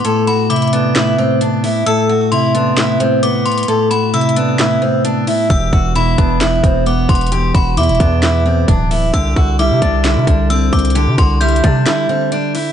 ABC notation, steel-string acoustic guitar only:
X:1
M:4/4
L:1/8
Q:1/4=132
K:Ador
V:1 name="Steel-string acoustic guitar"
A F E D E C D E | A F E D E C B,2 | A F E D E C D E | G F E D E C B,2 |
G F E D E C D E | G F E D E D C2 | G F E D E C D E |]